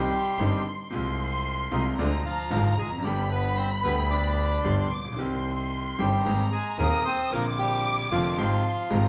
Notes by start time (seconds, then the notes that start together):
Already playing: G3 G4 C6
0.39 G1 G2 C3 D#3 G3 D#4
0.90 C2 C3 F3 G#3 F4 C6
1.71 C2 C3 D#3 F3 G#3 D#4 F4
1.98 D2 D3 F3 G#3 D4 F4 A#5
2.25 F3 F4
2.50 G#1 G#2 D3 F3 G#3 F4
2.78 F1 G#3 G#4
2.86 E2
2.91 F2
2.98 F#2
3.03 G1 G2 D3 G3 B3 G4 B5
3.07 G4
3.31 B3 B4
3.56 C4 C5
3.83 D2 D3 G3 B3 B4
3.88 G4
4.11 D4 D5
4.64 G1 G2 D3 G3 B3 G4 C6
4.91 A#1 D6
4.97 A1
5.04 A#1
5.12 B1 D#3
5.18 C2 C3 G3 C4 G4 C6
5.98 G1 G2 D#3 G3 C4 G4
6.25 G#1 G#2 D#3 A#3 C4 G#4 A#5
6.52 G#3 G#4
6.78 D#1 D#2 D#3 A#3 C4 G#4 A#4 D#6
7.05 C4 C5
7.25 D#6
7.30 A#1 A#2 D3 A#3 C4 A#4 D6
7.34 F4
7.59 G3 G4
8.11 F1 F2 D3 F3 A#3 C4 F4
8.37 G#1 G#2 F3 G#3 C4 G4 C6
8.90 G#1 G#2 F3 G#3 C4 G4 A#5